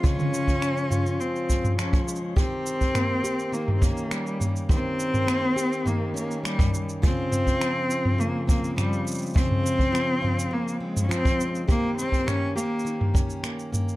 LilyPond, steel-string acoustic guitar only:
\new Staff \with { instrumentName = "Steel-string acoustic guitar" } { \time 4/4 \key ees \mixolydian \tempo 4 = 103 <des f aes c' f'>4 f8 f'8 des4 f8 aes8 | <ees g'>4 bes8 g'8 ees8 des'8 bes8 bes8 | <ees g'>4 bes8 g'8 ees8 des'8 bes8 bes8 | <des f'>8 c'8 f8 f'8 des8 c'8 f8 aes8 |
<des f'>8 c'8 f8 f'8 des8 c'8 f8 aes8 | <ees g'>8 des'8 bes8 g'8 ees8 des'8 bes8 bes8 | }